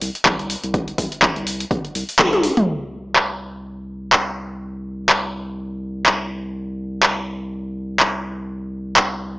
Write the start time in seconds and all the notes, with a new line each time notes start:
0.01 C2, open hi-hat
0.15 closed hi-hat
0.26 C2, kick, clap, closed hi-hat
0.39 closed hi-hat
0.50 open hi-hat
0.64 C2, closed hi-hat
0.74 kick, closed hi-hat
0.88 closed hi-hat
0.98 C2, kick, open hi-hat
1.12 closed hi-hat
1.22 kick, clap, closed hi-hat
1.36 C2, closed hi-hat
1.47 open hi-hat
1.60 closed hi-hat
1.71 G1, kick, closed hi-hat
1.85 closed hi-hat
1.95 C2, open hi-hat
2.09 open hi-hat
2.19 C2, kick, clap, closed hi-hat, high tom
2.33 closed hi-hat, high tom
2.43 open hi-hat
2.57 A#1, closed hi-hat, mid tom
2.68 C2
3.16 clap
4.13 clap
5.09 clap
6.06 clap
7.03 clap
8.00 clap
8.97 clap